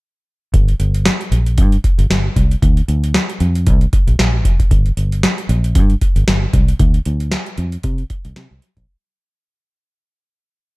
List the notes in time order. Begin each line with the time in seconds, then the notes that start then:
0.54 G1, kick, closed hi-hat
0.68 closed hi-hat
0.80 G1, closed hi-hat
0.94 closed hi-hat
1.06 snare, closed hi-hat
1.21 closed hi-hat
1.31 A#1, closed hi-hat
1.46 closed hi-hat
1.58 G2, kick, closed hi-hat
1.72 closed hi-hat
1.84 kick, closed hi-hat
1.98 G1, closed hi-hat
2.10 G1, snare, closed hi-hat
2.36 C2, kick, closed hi-hat
2.51 closed hi-hat
2.62 D2, kick, closed hi-hat
2.77 closed hi-hat
2.88 D2, closed hi-hat
3.04 closed hi-hat
3.14 snare, closed hi-hat
3.29 closed hi-hat
3.40 F2, closed hi-hat
3.55 closed hi-hat
3.67 C2, kick, closed hi-hat
3.81 closed hi-hat
3.93 kick, closed hi-hat
4.07 A#1, closed hi-hat
4.19 A#1, snare, closed hi-hat
4.45 F1, kick, closed hi-hat
4.60 kick, closed hi-hat
4.71 G1, kick, closed hi-hat
4.86 closed hi-hat
4.97 G1, closed hi-hat
5.12 closed hi-hat
5.23 snare, closed hi-hat
5.38 closed hi-hat
5.49 A#1, closed hi-hat
5.64 closed hi-hat
5.75 G2, kick, closed hi-hat
5.90 closed hi-hat
6.01 kick, closed hi-hat
6.16 G1, closed hi-hat
6.27 G1, snare, closed hi-hat
6.53 C2, kick, closed hi-hat
6.68 closed hi-hat
6.79 D2, kick, closed hi-hat
6.94 closed hi-hat
7.05 D2, closed hi-hat
7.20 closed hi-hat
7.32 snare, closed hi-hat
7.46 closed hi-hat
7.58 F2, closed hi-hat
7.72 closed hi-hat
7.83 C3, kick, closed hi-hat
7.98 closed hi-hat
8.10 kick, closed hi-hat
8.25 C2, closed hi-hat
8.36 C3, snare, closed hi-hat
8.51 C2
8.62 closed hi-hat
8.77 A#1, kick, closed hi-hat